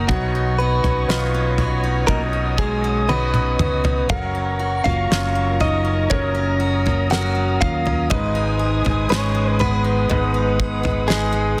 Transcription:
Already playing: D#3 F#3 A#3 D#4 F#4 A4 A#4
0.08 B1 B2 F#3 B3 D#4 F#4 C#5 D#5 C#6, kick, floor tom
0.35 D#4
0.58 B3 F#4 B4
0.84 B1 C#4, floor tom
1.08 B1 B3 D#4 F4 F#4, snare
1.34 C#4
1.58 F#4, floor tom
1.84 D#4
2.07 B1 B2 A#3 D#4 A#4 D#5 D#6, kick, floor tom
2.33 D#4
2.58 G#3 F#4 G#4, kick
2.84 C#4
3.09 B3 D#4 F#4 B4, high tom
3.34 C#4, mid tom
3.59 C#2 F#4, mid tom
3.84 D#4, floor tom
4.09 F#1 F#2 F#3 C#4 A#4 F#5 A#5 C#6, kick, floor tom
4.13 F#4
4.35 C#4
4.59 F#4
4.84 F#1 A#3 F4 F5, floor tom
5.10 F#1 F#3 C#4 F4, snare
5.35 A#3
5.60 D#4 F#4 D#5, floor tom
5.85 C#4
6.10 F#1 F#2 F#3 C#4 A#4 C#5 D#6, kick, floor tom
6.35 C#4
6.60 F#4
6.86 A#3, floor tom
7.10 F#3 C#4 F#4 A#4 F#5, snare
7.35 A#3
7.61 D#2 F4 F5, kick, floor tom
7.85 C#4, floor tom
8.10 G#1 G#2 G#3 D#4 B4 D#5 G#5, kick, floor tom
8.35 D#4
8.59 G#4
8.85 G#1 B3, floor tom
9.09 G#1 G#3 C#4 D#4 G#4 B4 C#5, snare
9.35 B3
9.59 B3 G#4 B4, floor tom
9.84 D#4
10.09 G#1 G#2 G#3 D#4 B4 F#5, floor tom
10.34 D#4
10.59 G#4, kick
10.83 B3, floor tom
11.08 G#3 D#4 G#4 B4, snare
11.32 B3

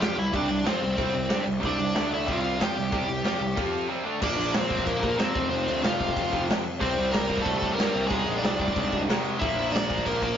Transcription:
0.00 F2 F3 C4 F4 G4 G5, snare, crash
0.16 C2 C3 G3 E4 E5, crash
0.32 C2 C3 G3 C4 D4 D5, kick, crash
0.49 C2 C3 G3, crash
0.64 F2 F3 C4 F4, snare, crash
0.68 C4 C5
0.81 C2 C3 G3, crash
0.97 C2 C3 G3 C4, kick, crash
1.14 C2 C3 G3, crash
1.29 G2 G3 D4 G4, snare, crash
1.45 C2 C3 G3, crash
1.60 C2 C3 G3 C4, kick, crash
1.65 D4 D5
1.78 C2 C3 G3, crash
1.95 D2 D3 A3 D4, snare, crash
2.12 E4 E5, crash
2.27 C2 C3 G3 C4 F4, kick, crash
2.31 F5
2.44 crash
2.59 F2 F3 C4 F4 G4, snare, crash
2.63 G5
2.75 C2 C3 G3, crash
2.92 C2 C3 G3 C4, kick, crash
3.08 C2 C3 G3, crash
3.24 F2 F3 C4 F4, snare, crash
3.40 C2 C3 G3, crash
3.56 F2 F3 C4 F4, kick, crash
3.74 crash
3.89 C3 G3 C4
4.04 D3 A3 D4
4.20 A#1 A#2 F3 A#3 D5, kick, crash
4.24 D4
4.37 A#1, crash
4.54 A#1 C4 C5, snare, crash
4.68 A#2 F3 A#3, kick, crash
4.78 kick
4.86 A#1 A#4, kick, crash
4.91 A#3
5.00 A#3 A#4, kick, crash
5.17 F2 A#2 F3 A#3 C4 C5, snare, crash
5.33 F1 F2 C3 F3, kick, crash
5.49 F1 C4 C5, crash
5.67 D2, crash
5.83 F1 F2 C3 F3 F4 F5, snare, crash
6.00 kick, crash
6.08 kick
6.17 F1, kick, crash
6.32 F1 F2 C3 F3, kick, crash
6.49 F2, snare, crash
6.66 crash
6.80 C2 C3 G3 C4 C5, kick, crash
6.98 C2, crash
7.12 C2 A#3 A#4, snare, crash
7.28 C3 G3 C4, kick, crash
7.38 kick
7.42 C2 A3 A4, kick, crash
7.58 A4, kick
7.63 A3, crash
7.74 G2 C3 A#4
7.79 G3 A#3 C4, snare, crash
7.94 C2, crash
8.07 C2 G#2 G#4, kick, crash
8.11 D#3 G#3
8.26 A#1, crash
8.38 D5
8.42 C2 D4, snare, crash
8.58 G#2 D#3 G#3, kick, crash
8.68 kick
8.76 C2, kick, crash
8.93 C2, kick, crash
9.08 G#2 C3 D#3 G#3, snare, crash
9.26 crash
9.39 A#1 A#2 F3 A#3 E4 E5, kick, crash
9.55 A#1, crash
9.72 A#1 D4 D5, snare, crash
9.88 A#2 F3 A#3, kick, crash
9.98 kick
10.05 A#1 A#3 A#4, kick, crash
10.22 A#3 A#4, kick, crash

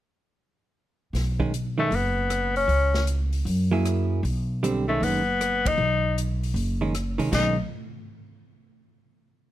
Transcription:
1.13 B1, snare, open hi-hat
1.40 D#3 G#3 C#4, kick
1.54 closed hi-hat
1.78 D#3 G#3 A3 C#4
1.91 F#1, open hi-hat
1.95 B3
2.30 cross-stick, closed hi-hat
2.56 C#4, open hi-hat
2.68 C#2, open hi-hat
2.94 snare
3.07 closed hi-hat
3.33 open hi-hat
3.45 F#2, open hi-hat
3.71 F#3 A#3 E4 G#4
3.85 cross-stick, closed hi-hat
4.23 B1, open hi-hat
4.63 D3 G3 C4, closed hi-hat
4.88 D#3 G#3 A3 C#4
5.00 F#1 B3, open hi-hat
5.41 cross-stick, closed hi-hat
5.66 D#4, kick, ride
5.78 B1
6.18 closed hi-hat
6.43 open hi-hat
6.54 F#1, open hi-hat
6.81 D#3 G#3 C#4
6.95 cross-stick, closed hi-hat
7.18 C2 D#3 G#3 C#4, open hi-hat
7.31 B1 D#3 G#3 C#4 D#4, kick, snare, crash

